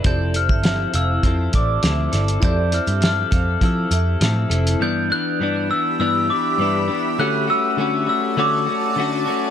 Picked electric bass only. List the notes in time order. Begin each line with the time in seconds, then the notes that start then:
0.05 F1
0.49 G1
0.94 F1
1.23 F2
1.54 A1
1.83 D2
2.13 G1
2.43 F2
2.87 G2
3.32 F2
3.61 F3
3.91 F2
4.21 A2
4.50 F1